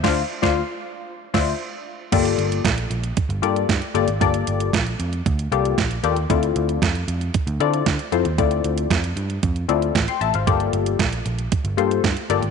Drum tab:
CC |x---------x-----|x---------------|----------------|----------------|
HH |----------------|xxxxxxxxxxxxxxxx|xxxxxxxxxxxxxxxx|xxxxxxxxxxxxxxxx|
SD |o--o------o-----|----o-------o---|----o-------o---|----o-------o---|
BD |o--o------o-----|o---o---o---o---|o---o---o---o---|o---o---o---o---|

CC |----------------|----------------|
HH |xxxxxxxxxxxxxxxx|xxxxxxxxxxxxxxxx|
SD |----o-------o---|----o-------o---|
BD |o---o---o---o---|o---o---o---o---|